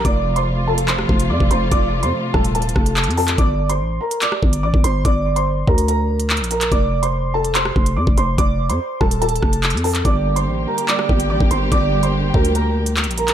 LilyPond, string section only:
\new Staff \with { instrumentName = "String section" } { \clef bass \time 4/4 \key g \minor \tempo 4 = 144 <c f a f'>1~ | <c f a f'>1 | r1 | r1 |
r1 | r1 | <d g bes g'>1~ | <d g bes g'>1 | }